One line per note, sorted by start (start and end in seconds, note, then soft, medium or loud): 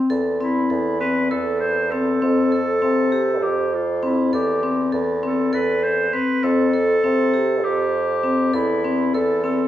0.00 0.26 C4 medium
0.10 0.67 E2 medium
0.10 0.36 A4 medium
0.40 0.66 C4 medium
0.40 0.97 E4 medium
0.70 1.27 E2 medium
0.70 0.96 A4 soft
1.00 1.26 C4 medium
1.00 1.29 B4 medium
1.30 2.18 E2 medium
1.30 1.61 A4 medium
1.30 1.82 A4 medium
1.60 1.92 C5 medium
1.91 2.17 C4 medium
1.91 3.44 A4 medium
2.22 2.78 F2 medium
2.22 2.48 C4 medium
2.52 2.77 A4 medium
2.82 3.44 C3 medium
2.82 3.08 C4 medium
3.12 3.63 G4 medium
3.42 4.29 F2 medium
3.42 3.75 G4 medium
3.74 4.05 F4 medium
4.03 4.28 C4 medium
4.03 4.35 E4 medium
4.33 4.89 E2 medium
4.33 4.97 G4 medium
4.33 4.58 A4 medium
4.63 4.88 C4 medium
4.92 5.50 E2 medium
4.92 5.18 A4 medium
5.23 5.49 C4 medium
5.23 5.55 A4 medium
5.53 6.12 E2 medium
5.53 6.04 A4 medium
5.53 5.85 B4 medium
5.84 6.15 C5 medium
6.13 6.39 C4 medium
6.13 6.45 B4 medium
6.43 7.00 F2 medium
6.43 6.69 C4 medium
6.43 7.66 A4 medium
6.74 6.99 A4 medium
7.04 7.66 C3 medium
7.04 7.29 C4 medium
7.34 7.84 G4 medium
7.64 8.50 F2 medium
7.64 8.56 G4 medium
8.24 8.49 C4 medium
8.54 9.10 E2 medium
8.54 9.16 E4 medium
8.54 8.79 A4 medium
8.84 9.09 C4 medium
9.14 9.68 E2 medium
9.14 9.43 A4 medium
9.14 9.39 A4 medium
9.44 9.68 C4 medium
9.44 9.68 A4 medium